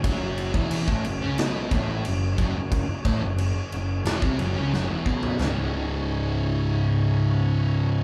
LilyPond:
<<
  \new Staff \with { instrumentName = "Tonewheel organ" } { \time 4/4 \key cis \minor \tempo 4 = 90 <fis cis' gis'>1~ | <fis cis' gis'>1 | <cis' gis' cis''>1 | }
  \new Staff \with { instrumentName = "Distorted electric guitar" } { \clef bass \time 4/4 \key cis \minor <fis, fis>8. <e, e>8 <a, a>16 fis,16 <cis cis'>16 <b, b>8 <a, a>8 fis,8 <fis, fis>16 fis,16~ | fis,16 r16 <a, a>16 fis,8 r16 fis,8 <e, e>16 <bis, bis>16 <fis, fis>16 <cis cis'>16 <fis, fis>16 <e, e>16 <b, b>8 | <cis, gis, cis>1 | }
  \new Staff \with { instrumentName = "Distorted electric guitar" } { \clef bass \time 4/4 \key cis \minor <fis, fis>8. <e, e>8 <a, a>16 fis,16 <cis cis'>16 <b, b>8 <a, a>8 fis,8 <fis, fis>16 fis,16~ | fis,16 r16 <a, a>16 fis,8 r16 fis,8 <e, e>16 <bis, bis>16 <fis, fis>16 <cis cis'>16 <fis, fis>16 <e, e>16 <b, b>8 | <cis, gis, cis>1 | }
  \new Staff \with { instrumentName = "Picked electric bass" } { \clef bass \time 4/4 \key cis \minor fis,,8. e,,8 a,,16 fis,,16 cis,16 b,,8 a,,8 fis,,8 fis,,16 fis,,16~ | fis,,16 r16 a,,16 fis,,8 r16 fis,,8 e,,16 bis,,16 fis,,16 cis,16 fis,,16 e,,16 b,,8 | cis,,1 | }
  \new DrumStaff \with { instrumentName = "Drums" } \drummode { \time 4/4 <cymc bd>8 cymc16 bd16 cymc16 bd16 cymc8 <cymc sn>8 <cymc bd>8 cymc8 <cymc bd>8 | <cymc bd>8 <cymc bd>8 cymc8 cymc8 <cymc sn>16 bd16 cymc8 sn8 bd16 tomfh16 | <sn tomfh>4 r4 r4 r4 | }
>>